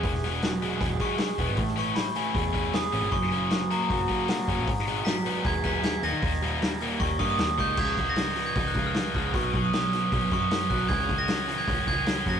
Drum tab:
CC |----------------|----------------|----------------|----------------|
HH |o-o-o-o-o-o-o-o-|o-o-o-o-o-o-o-o-|o-o-o-o-o-o-o-o-|o-o-o-o-o-o-o-o-|
SD |-o--o-------o---|-o--o-------o---|-o--o-------o---|-o--o-------o---|
BD |o-------o-o---o-|o-------o-o-----|o-------o-o---o-|o-------o-o-----|

CC |----------------|x---------------|----------------|----------------|
HH |o-o-o-o-o-o-o-o-|--o-o-o-o-o-o-o-|o-o-o-o-o-o-o-o-|o-o-o-o-o-o-o-o-|
SD |-o--o-------o---|----o-------o---|----o-o-----o---|----o-------o---|
BD |o-------o-o---o-|o-o-----o-o---o-|o-o-----o-o---o-|o-o-----o-o---o-|